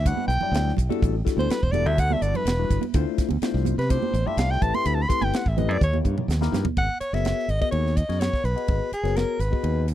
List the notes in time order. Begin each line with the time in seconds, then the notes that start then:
Already playing: D2
0.05 G3 D4 E4 F#4 B4 F#5, kick, hi-hat pedal, ride
0.17 high conga
0.28 B1 G5, hi-hat pedal, ride
0.41 F#3 G3 D4 E4 D5, muted fingered electric bass stroke, low conga
0.52 D2, snare, hi-hat pedal, ride
0.68 snare
0.77 B1, kick, hi-hat pedal, ride, low conga
0.89 G3 D4 E4 F#4 A4, ride, high conga
1.02 A1, kick, hi-hat pedal, ride
1.24 G3 D4 E4 F#4 A4, kick, hi-hat pedal, ride
1.29 snare
1.37 D2 C5, ride, high conga
1.49 B4, muted fingered electric bass stroke, snare, hi-hat pedal, ride
1.62 E1 C5, kick
1.72 G3 D4 E4 F#4 A4 D5, hi-hat pedal, ride, high conga, low conga
1.86 D2 E5, ride
1.98 F#5, kick, hi-hat pedal, ride
2.10 G3 D4 E4 F#4 A4 E5, high conga
2.22 G1 D5, hi-hat pedal, ride
2.34 B4, ride, low conga
2.45 E1, snare, hi-hat pedal, ride
2.59 G3 D4 E4 F#4 B4
2.70 G1, kick, hi-hat pedal, ride
2.81 ride, high conga
2.94 D2 A3 D4 E4 F4 C5, kick, hi-hat pedal, ride
3.18 muted fingered electric bass stroke, kick, snare, hi-hat pedal, ride
3.29 D2, ride, high conga
3.42 A3 D4 E4 F4 C5, muted fingered electric bass stroke, snare, hi-hat pedal, ride
3.54 C2, snare
3.65 hi-hat pedal, ride, high conga, low conga
3.78 C3 B4, snare, ride
3.90 A3 D4 E4 F4 G4 C5, kick, hi-hat pedal, ride
4.03 high conga
4.14 A1, hi-hat pedal, ride
4.26 A3 D4 E4 F4 G4 E5, low conga
4.37 C2 F5, snare, hi-hat pedal, ride
4.51 G5, snare
4.61 A1 A3 C4 E4 G4 B4 A5, kick, hi-hat pedal, ride, low conga
4.74 C6, ride, high conga
4.85 D2 B5, hi-hat pedal, ride
4.95 A5
5.02 B5
5.08 A3 C4 E4 G4 B4 C6, kick, hi-hat pedal, ride
5.21 G1 G5, ride, high conga
5.33 F#5, snare, hi-hat pedal, ride
5.46 A1 E5, kick
5.57 A3 C4 E4 G4 B4 D#5, hi-hat pedal, ride, high conga, low conga
5.69 F#2 D5, ride
5.81 D#2 C#5, kick, hi-hat pedal, high tom
5.93 A#3 D#4 E4 G4 C#5, high tom, high conga
6.05 G2, kick, hi-hat pedal
6.18 mid tom, low conga
6.28 D#2, snare, hi-hat pedal
6.41 A#3 D#4 E4 G4 A#4, snare, high conga
6.52 G2, snare, hi-hat pedal, low conga
6.65 muted fingered electric bass stroke, floor tom, high conga
6.77 G#1 F#5, kick, ride
7.01 C#5, muted fingered electric bass stroke, hi-hat pedal, ride
7.13 F#1 B3 F#4 G#4 A#4 C#5 E5, snare, ride
7.25 snare, ride
7.39 snare
7.48 G#1 D#5, hi-hat pedal, ride
7.61 B3 F#4 G#4 A#4 D#5, kick, ride
7.71 D#2 C#5, ride
7.86 snare
7.97 D#5, kick, hi-hat pedal, ride
8.09 F#2 B3 F#4 G#4 A#4 C#5, snare, ride
8.20 C#5, snare, ride
8.33 muted fingered electric bass stroke, kick, snare
8.44 B1 B4, hi-hat pedal, ride
8.56 B3 F#4 G#4 B4 D#5, ride
8.68 G#1, kick, ride
8.92 G#4, muted fingered electric bass stroke, hi-hat pedal, ride
9.03 F#1 B3 F#4 G#4 A#4 C#5, snare, ride
9.16 A#4, snare, ride
9.39 G#1 B4, hi-hat pedal, ride
9.51 B3 F#4 G#4 B4 D#5, kick
9.64 D#2, ride
9.88 hi-hat pedal, ride